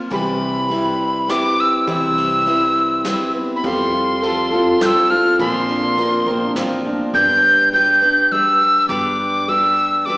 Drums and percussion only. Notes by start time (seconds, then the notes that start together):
0.12 kick, ride
0.71 ride
1.29 snare, ride
1.88 kick, ride
2.17 ride
2.47 ride
3.05 snare, ride
3.64 kick, ride
4.23 ride
4.81 snare, ride
5.39 kick, ride
5.68 ride
5.98 ride
6.56 snare, ride